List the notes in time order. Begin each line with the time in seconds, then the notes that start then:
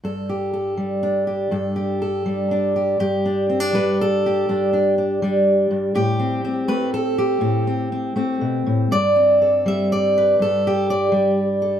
0.04 G2 A4
0.29 G4
0.53 A4
0.77 G3
1.03 D4
1.27 G4
1.51 G2 A4
1.76 G4
2.02 A4
2.26 G3
2.51 D4
2.76 G4
3.00 G2 G4
3.25 D4
3.50 C4
3.60 D4
3.73 G3 B4
4.01 A4
4.26 G4
4.49 G2 D4
4.73 D4
4.98 D4
5.22 G3 D4
5.71 G2
5.95 A2 G4
6.19 C4
6.45 C4
6.68 A3 B4
6.94 A4
7.18 G4
7.41 A2 C4
7.67 C4
7.92 C4
8.16 A3 C4
8.41 B2
8.66 A2
8.91 G2 D5
9.16 C4
9.42 A4
9.66 G3 E5
9.92 D5
10.18 B4
10.39 G2 A4
10.67 G4
10.90 D5
11.12 G3
11.62 A4